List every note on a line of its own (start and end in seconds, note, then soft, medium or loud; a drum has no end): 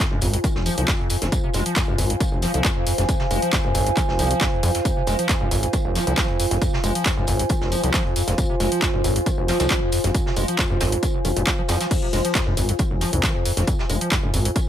0.00 14.69 F4 medium
0.00 14.69 C5 medium
0.00 14.69 F5 medium
0.00 14.69 G#5 medium
0.00 snare loud
0.11 0.18 F1 loud
0.11 0.20 F#2 loud
0.21 0.36 G#1 loud
0.21 0.28 F2 loud
0.21 open hi-hat loud
0.21 tambourine medium
0.33 0.39 F2 medium
0.33 closed hi-hat soft
0.33 closed hi-hat medium
0.44 0.48 D#3 loud
0.44 kick loud
0.44 closed hi-hat medium
0.44 tambourine medium
0.56 0.69 F1 medium
0.56 0.61 F1 medium
0.56 snare medium
0.66 0.76 F3 medium
0.66 open hi-hat loud
0.66 tambourine medium
0.78 0.84 C2 medium
0.78 0.86 F3 medium
0.78 closed hi-hat medium
0.88 0.95 F2 medium
0.88 kick loud
0.88 snare loud
0.88 clap loud
0.88 closed hi-hat medium
0.88 tambourine medium
1.00 1.08 F2 medium
1.00 closed hi-hat soft
1.10 1.17 F2 loud
1.10 open hi-hat loud
1.10 tambourine medium
1.22 1.28 F1 medium
1.22 1.28 F2 medium
1.22 snare soft
1.22 closed hi-hat medium
1.32 1.39 F2 medium
1.32 kick loud
1.32 closed hi-hat medium
1.32 tambourine medium
1.44 1.50 C3 medium
1.53 1.62 F1 loud
1.53 1.64 G#3 medium
1.53 snare soft
1.53 open hi-hat loud
1.53 tambourine medium
1.66 1.74 F3 medium
1.66 closed hi-hat medium
1.76 1.83 F2 medium
1.76 kick loud
1.76 snare loud
1.76 clap loud
1.76 closed hi-hat medium
1.76 tambourine loud
1.88 1.95 F1 loud
1.88 1.97 F#2 loud
1.98 2.13 G#1 loud
1.98 2.05 F2 loud
1.98 open hi-hat loud
1.98 tambourine medium
2.10 2.16 F2 medium
2.10 closed hi-hat medium
2.20 2.24 D#3 loud
2.20 kick loud
2.20 closed hi-hat medium
2.20 tambourine medium
2.32 2.38 F1 medium
2.32 2.46 F1 medium
2.42 2.52 F3 medium
2.42 snare soft
2.42 open hi-hat loud
2.42 tambourine medium
2.54 2.61 C2 medium
2.54 2.63 F3 medium
2.54 closed hi-hat medium
2.65 2.71 F2 medium
2.65 kick loud
2.65 snare loud
2.65 clap loud
2.65 closed hi-hat medium
2.65 tambourine medium
2.76 2.85 F2 medium
2.87 2.93 F2 loud
2.87 open hi-hat loud
2.87 tambourine medium
2.98 3.05 F1 medium
2.98 3.04 F2 medium
2.98 snare soft
2.98 closed hi-hat medium
3.09 3.15 F2 medium
3.09 kick loud
3.09 closed hi-hat medium
3.09 tambourine medium
3.20 3.26 C3 medium
3.20 snare medium
3.31 3.38 F1 loud
3.31 3.40 G#3 medium
3.31 open hi-hat loud
3.31 tambourine medium
3.42 3.51 F3 medium
3.42 closed hi-hat medium
3.53 3.59 F2 medium
3.53 kick loud
3.53 snare loud
3.53 clap loud
3.53 closed hi-hat medium
3.53 tambourine medium
3.64 3.71 F1 loud
3.64 3.73 F#2 loud
3.75 3.89 G#1 loud
3.75 3.81 F2 loud
3.75 open hi-hat loud
3.75 tambourine medium
3.87 3.92 F2 medium
3.87 closed hi-hat medium
3.87 closed hi-hat soft
3.97 4.01 D#3 loud
3.97 kick loud
3.97 clap medium
3.97 closed hi-hat medium
3.97 tambourine medium
4.09 4.14 F1 medium
4.09 4.18 F1 medium
4.09 snare soft
4.19 4.34 C2 medium
4.19 4.29 F3 medium
4.19 open hi-hat loud
4.19 tambourine medium
4.31 4.39 F3 medium
4.31 closed hi-hat medium
4.41 4.47 F2 medium
4.41 kick loud
4.41 snare loud
4.41 clap loud
4.41 closed hi-hat medium
4.41 tambourine medium
4.53 4.61 F2 medium
4.53 closed hi-hat soft
4.63 4.69 F2 loud
4.63 4.71 F2 medium
4.63 open hi-hat loud
4.63 tambourine medium
4.75 4.80 F2 medium
4.75 snare soft
4.75 closed hi-hat medium
4.85 4.92 F2 medium
4.85 kick loud
4.85 closed hi-hat medium
4.85 tambourine medium
4.97 5.03 C3 medium
5.07 5.15 F1 loud
5.07 5.17 G#3 medium
5.07 snare soft
5.07 open hi-hat loud
5.07 tambourine medium
5.19 5.27 F3 medium
5.19 closed hi-hat medium
5.29 5.36 F2 medium
5.29 kick loud
5.29 snare loud
5.29 clap loud
5.29 closed hi-hat medium
5.29 tambourine medium
5.41 5.48 F1 loud
5.41 5.49 F#2 loud
5.51 5.66 G#1 medium
5.51 5.58 F2 loud
5.51 open hi-hat loud
5.51 tambourine medium
5.63 5.69 F2 medium
5.63 closed hi-hat medium
5.73 5.77 D#3 loud
5.73 kick loud
5.73 closed hi-hat medium
5.73 tambourine medium
5.85 5.91 F1 medium
5.85 5.99 F1 medium
5.95 6.05 F3 medium
5.95 snare soft
5.95 open hi-hat loud
5.95 tambourine medium
6.07 6.14 C2 medium
6.07 6.16 F3 medium
6.07 closed hi-hat medium
6.17 kick loud
6.17 snare loud
6.17 clap loud
6.17 closed hi-hat medium
6.17 tambourine loud
6.29 6.38 F2 medium
6.40 6.46 F2 loud
6.40 open hi-hat loud
6.40 tambourine medium
6.51 6.58 F1 medium
6.51 6.57 F2 medium
6.51 snare soft
6.51 closed hi-hat medium
6.62 6.68 F2 medium
6.62 kick loud
6.62 closed hi-hat medium
6.62 tambourine medium
6.73 6.79 C3 medium
6.73 snare medium
6.84 6.91 F1 loud
6.84 6.93 G#3 medium
6.84 open hi-hat loud
6.84 tambourine medium
6.95 7.04 F3 medium
6.95 closed hi-hat medium
7.05 7.12 F2 medium
7.05 kick loud
7.05 snare loud
7.05 clap loud
7.05 closed hi-hat medium
7.05 tambourine medium
7.17 7.24 F1 loud
7.17 7.26 F#2 loud
7.27 7.42 G#1 loud
7.27 7.34 F2 loud
7.27 open hi-hat loud
7.27 tambourine medium
7.39 7.45 F2 medium
7.39 closed hi-hat soft
7.39 closed hi-hat medium
7.49 7.54 D#3 loud
7.49 kick loud
7.49 closed hi-hat medium
7.49 tambourine medium
7.61 7.75 F1 medium
7.61 7.67 F1 medium
7.61 snare soft
7.72 7.82 F3 medium
7.72 open hi-hat loud
7.72 tambourine medium
7.83 7.90 C2 medium
7.83 7.92 F3 medium
7.83 closed hi-hat medium
7.94 8.04 F3 loud
7.94 kick loud
7.94 snare loud
7.94 clap loud
7.94 closed hi-hat medium
7.94 tambourine medium
8.06 8.14 F2 medium
8.06 closed hi-hat soft
8.16 8.22 F2 loud
8.16 open hi-hat loud
8.16 tambourine medium
8.28 8.34 F1 medium
8.28 8.33 F2 medium
8.28 snare soft
8.28 closed hi-hat medium
8.38 8.44 F2 medium
8.38 kick loud
8.38 closed hi-hat medium
8.38 tambourine medium
8.50 8.55 C3 medium
8.60 8.68 F1 loud
8.60 8.70 G#3 medium
8.60 snare soft
8.60 open hi-hat loud
8.60 tambourine medium
8.72 8.80 F3 medium
8.72 closed hi-hat medium
8.82 8.89 F2 medium
8.82 kick loud
8.82 snare loud
8.82 clap loud
8.82 closed hi-hat medium
8.82 tambourine medium
8.94 9.01 F1 loud
8.94 9.02 F#2 loud
9.04 9.19 G#1 loud
9.04 9.11 F2 loud
9.04 open hi-hat loud
9.04 tambourine medium
9.16 9.22 F2 medium
9.16 closed hi-hat medium
9.26 9.30 D#3 loud
9.26 kick loud
9.26 closed hi-hat medium
9.26 tambourine medium
9.38 9.44 F1 medium
9.38 9.52 F1 medium
9.48 9.58 F3 medium
9.48 snare loud
9.48 open hi-hat loud
9.48 tambourine medium
9.60 9.67 C2 medium
9.60 9.69 F3 medium
9.60 snare loud
9.60 closed hi-hat medium
9.60 tambourine medium
9.70 kick loud
9.70 snare loud
9.70 clap loud
9.70 closed hi-hat medium
9.70 tambourine medium
9.82 9.91 F2 medium
9.92 9.99 F2 loud
9.92 open hi-hat loud
9.92 tambourine medium
10.04 10.11 F1 medium
10.04 10.10 F2 medium
10.04 snare soft
10.04 closed hi-hat medium
10.14 10.21 F2 medium
10.14 kick loud
10.14 closed hi-hat medium
10.14 tambourine medium
10.26 10.32 C3 medium
10.26 snare medium
10.36 10.44 F1 loud
10.36 10.46 G#3 medium
10.36 open hi-hat loud
10.36 tambourine medium
10.48 10.57 F3 medium
10.48 closed hi-hat medium
10.59 10.65 F2 medium
10.59 kick loud
10.59 snare loud
10.59 clap loud
10.59 closed hi-hat medium
10.59 tambourine medium
10.70 10.77 F1 loud
10.70 10.79 F#2 loud
10.80 10.95 G#1 loud
10.80 10.87 F2 loud
10.80 snare loud
10.80 open hi-hat loud
10.80 tambourine medium
10.92 10.98 F2 medium
10.92 closed hi-hat medium
11.03 11.07 D#3 loud
11.03 kick loud
11.03 closed hi-hat medium
11.03 tambourine medium
11.14 11.20 F1 medium
11.25 11.32 F1 medium
11.25 11.29 D#3 medium
11.25 open hi-hat loud
11.25 tambourine medium
11.36 11.43 F1 medium
11.36 11.42 A#2 medium
11.36 closed hi-hat medium
11.47 11.53 F3 medium
11.47 kick loud
11.47 snare loud
11.47 clap loud
11.47 closed hi-hat medium
11.47 tambourine medium
11.58 11.62 F3 loud
11.58 closed hi-hat soft
11.68 11.76 F2 loud
11.68 11.79 F3 loud
11.68 snare loud
11.68 open hi-hat loud
11.68 tambourine medium
11.81 11.86 F3 medium
11.81 snare medium
11.81 closed hi-hat medium
11.81 tambourine medium
11.91 11.97 F2 medium
11.91 kick loud
11.91 closed hi-hat medium
11.91 crash medium
11.91 tambourine medium
12.03 12.08 C3 medium
12.13 12.20 F1 loud
12.13 12.23 G#3 medium
12.13 snare soft
12.13 open hi-hat loud
12.13 tambourine medium
12.25 12.33 F3 medium
12.25 closed hi-hat medium
12.35 12.42 F2 medium
12.35 kick loud
12.35 snare loud
12.35 clap loud
12.35 closed hi-hat medium
12.35 tambourine medium
12.47 12.53 F1 loud
12.47 12.55 F#2 loud
12.57 12.72 G#1 loud
12.57 12.64 F2 loud
12.57 open hi-hat loud
12.57 tambourine medium
12.69 12.75 F2 medium
12.69 closed hi-hat medium
12.79 12.83 D#3 loud
12.79 kick loud
12.79 closed hi-hat medium
12.79 tambourine medium
12.91 13.05 F1 medium
12.91 12.97 F1 medium
13.01 13.11 F3 medium
13.01 snare soft
13.01 open hi-hat loud
13.01 tambourine medium
13.13 13.20 C2 medium
13.13 13.25 F2 medium
13.13 closed hi-hat medium
13.23 13.33 F3 loud
13.23 kick loud
13.23 snare loud
13.23 clap loud
13.23 closed hi-hat medium
13.23 tambourine medium
13.35 13.44 F2 medium
13.45 13.52 F2 loud
13.45 open hi-hat loud
13.45 tambourine medium
13.57 13.64 F1 medium
13.57 13.63 F2 medium
13.57 snare soft
13.57 closed hi-hat medium
13.67 13.74 F2 medium
13.67 kick loud
13.67 closed hi-hat medium
13.67 tambourine medium
13.79 13.85 C3 medium
13.79 snare medium
13.89 13.97 F1 loud
13.89 13.99 G#3 medium
13.89 open hi-hat loud
13.89 tambourine medium
14.01 14.10 F3 medium
14.01 closed hi-hat medium
14.11 14.18 F2 medium
14.11 kick loud
14.11 snare loud
14.11 clap loud
14.11 closed hi-hat medium
14.11 tambourine medium
14.23 14.30 F1 loud
14.23 14.32 F#2 loud
14.34 14.48 G#1 loud
14.34 14.40 F2 loud
14.34 open hi-hat loud
14.34 tambourine medium
14.45 14.51 F2 medium
14.45 closed hi-hat medium
14.56 14.60 D#3 loud
14.56 kick loud
14.56 closed hi-hat medium
14.56 tambourine medium